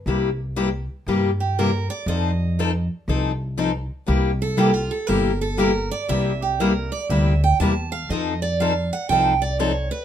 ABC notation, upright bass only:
X:1
M:4/4
L:1/8
Q:"Swing" 1/4=120
K:Cmix
V:1 name="Upright bass" clef=bass
C,,4 G,,4 | F,,4 C,,4 | C,,4 G,,,4 | C,,4 D,,2 E,,2 |
F,,4 C,,4 |]